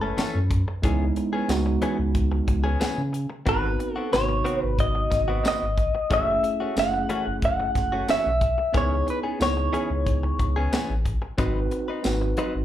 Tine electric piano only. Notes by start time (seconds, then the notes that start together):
0.82 G#3 B3 D#4 E4
1.48 G#3 B3 D#4 F#4
3.45 B3 C4 D#4 F#4
4.11 C3 B3 D#4 F#4
6.10 A3 C#4 E4 G#4
6.76 A3 C#4 E4 G#4
8.73 B3 D#4 E4 G#4
9.39 B3 D#4 E4 G#4
11.38 C4 D#4 F#4 B4
12.03 C4 D#4 F#4 B4